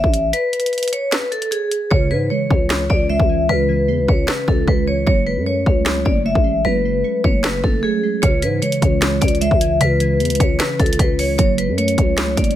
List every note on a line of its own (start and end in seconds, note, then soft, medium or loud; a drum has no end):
0.00 0.32 A1 loud
0.00 0.31 E5 medium
0.00 kick loud
0.14 closed hi-hat medium
0.33 0.89 B4 loud
0.33 closed hi-hat medium
0.53 closed hi-hat medium
0.60 closed hi-hat medium
0.66 closed hi-hat medium
0.73 closed hi-hat soft
0.78 closed hi-hat medium
0.83 closed hi-hat medium
0.88 closed hi-hat medium
0.93 1.08 C#5 medium
0.93 closed hi-hat medium
1.12 1.28 B4 medium
1.12 finger snap medium
1.12 snare loud
1.12 closed hi-hat medium
1.32 1.48 A4 medium
1.32 closed hi-hat medium
1.42 closed hi-hat medium
1.51 1.89 G#4 medium
1.51 closed hi-hat medium
1.71 closed hi-hat medium
1.91 2.13 C#2 loud
1.91 2.90 C#3 loud
1.91 2.07 C#5 loud
1.91 kick loud
2.11 2.30 G#2 loud
2.11 3.10 E3 medium
2.11 2.27 B4 medium
2.30 3.09 G#3 medium
2.30 2.86 C#5 medium
2.50 2.88 C#2 loud
2.50 2.89 C#4 medium
2.50 kick medium
2.70 finger snap medium
2.70 snare loud
2.90 3.18 C#2 loud
2.90 3.89 C#4 medium
2.90 3.06 D5 medium
2.90 kick medium
3.10 3.87 G#3 medium
3.10 3.47 E5 medium
3.20 3.48 C#2 loud
3.20 kick loud
3.29 3.68 E3 medium
3.49 3.90 C#2 loud
3.49 4.48 C#3 medium
3.49 4.05 B4 loud
3.69 4.68 E3 medium
3.88 4.00 E2 loud
3.88 4.67 G#3 medium
3.99 4.08 C#2 loud
4.08 4.27 C#2 loud
4.08 4.47 C#4 medium
4.08 4.24 C#5 medium
4.08 kick medium
4.28 4.44 B4 medium
4.28 finger snap medium
4.28 snare loud
4.48 4.67 C#2 loud
4.48 5.07 C#4 medium
4.48 4.64 A4 medium
4.48 kick loud
4.68 5.05 C#2 loud
4.68 5.07 G#3 medium
4.68 4.83 B4 medium
4.68 kick loud
4.87 5.07 E3 medium
4.87 5.03 C#5 medium
5.07 5.38 F#1 loud
5.07 6.06 F#3 medium
5.07 5.23 C#5 medium
5.07 kick loud
5.26 6.25 G#3 medium
5.26 5.42 B4 medium
5.37 5.65 F#2 loud
5.46 6.24 A3 medium
5.46 6.02 C#5 medium
5.66 6.04 C#2 loud
5.66 6.04 C#4 medium
5.66 kick loud
5.86 finger snap medium
5.86 snare loud
6.05 6.34 F#1 loud
6.05 7.04 C#4 medium
6.05 6.21 D5 medium
6.05 kick medium
6.25 7.03 A3 medium
6.25 6.63 E5 medium
6.35 6.64 A1 loud
6.35 kick loud
6.44 6.84 G#3 medium
6.65 7.03 F#1 loud
6.65 7.64 F#3 medium
6.65 7.21 B4 loud
6.85 7.84 G#3 medium
7.04 7.83 A3 medium
7.24 7.62 F#1 loud
7.24 7.62 C#4 medium
7.24 7.40 C#5 medium
7.24 kick loud
7.44 7.60 B4 medium
7.44 finger snap medium
7.44 snare loud
7.64 7.83 F#1 loud
7.64 8.23 C#4 medium
7.64 7.79 A4 medium
7.64 kick loud
7.83 8.23 A3 medium
7.83 8.20 G#4 medium
8.03 8.23 G#3 medium
8.22 8.44 C#2 loud
8.22 9.22 C#3 loud
8.22 8.38 C#5 loud
8.22 kick loud
8.22 closed hi-hat medium
8.42 8.61 G#2 loud
8.42 9.42 E3 medium
8.42 8.58 B4 medium
8.42 closed hi-hat medium
8.62 9.40 G#3 medium
8.62 9.18 C#5 medium
8.62 closed hi-hat medium
8.72 closed hi-hat medium
8.82 9.20 C#2 loud
8.82 9.20 C#4 medium
8.82 kick medium
8.82 closed hi-hat medium
9.02 finger snap medium
9.02 snare loud
9.02 closed hi-hat medium
9.21 9.50 C#2 loud
9.21 10.20 C#4 medium
9.21 9.37 D5 medium
9.21 kick medium
9.21 closed hi-hat medium
9.28 closed hi-hat medium
9.35 closed hi-hat soft
9.41 10.19 G#3 medium
9.41 9.78 E5 medium
9.41 closed hi-hat medium
9.51 9.80 C#2 loud
9.51 kick medium
9.61 9.99 E3 medium
9.61 closed hi-hat medium
9.81 10.22 C#2 loud
9.81 10.79 C#3 loud
9.81 10.37 B4 loud
9.81 closed hi-hat medium
10.00 10.99 E3 medium
10.00 closed hi-hat medium
10.20 10.32 E2 loud
10.20 10.98 G#3 medium
10.20 closed hi-hat soft
10.25 closed hi-hat medium
10.30 10.39 C#2 loud
10.30 closed hi-hat medium
10.35 closed hi-hat medium
10.40 10.59 C#2 loud
10.40 10.78 C#4 medium
10.40 10.56 C#5 medium
10.40 kick medium
10.40 closed hi-hat medium
10.59 10.75 B4 medium
10.59 finger snap medium
10.59 snare loud
10.59 closed hi-hat medium
10.79 10.98 C#2 loud
10.79 11.39 C#4 medium
10.79 10.95 A4 medium
10.79 kick loud
10.79 closed hi-hat soft
10.86 closed hi-hat medium
10.93 closed hi-hat medium
10.99 11.37 C#2 loud
10.99 11.39 G#3 medium
10.99 11.15 B4 medium
10.99 kick loud
10.99 closed hi-hat medium
11.19 11.39 E3 medium
11.19 11.35 C#5 medium
11.19 open hi-hat medium
11.38 11.70 F#1 loud
11.38 12.37 F#3 medium
11.38 11.54 C#5 medium
11.38 kick loud
11.38 closed hi-hat medium
11.58 12.56 G#3 medium
11.58 11.74 B4 medium
11.58 closed hi-hat medium
11.68 11.96 F#2 loud
11.78 12.56 A3 medium
11.78 12.34 C#5 medium
11.78 closed hi-hat medium
11.88 closed hi-hat medium
11.98 12.36 C#2 loud
11.98 12.36 C#4 medium
11.98 kick loud
11.98 closed hi-hat medium
12.18 finger snap medium
12.18 snare loud
12.18 closed hi-hat medium
12.37 12.56 F#1 loud
12.37 12.56 C#4 medium
12.37 12.53 D5 medium
12.37 kick medium
12.37 closed hi-hat medium
12.44 closed hi-hat medium
12.51 closed hi-hat soft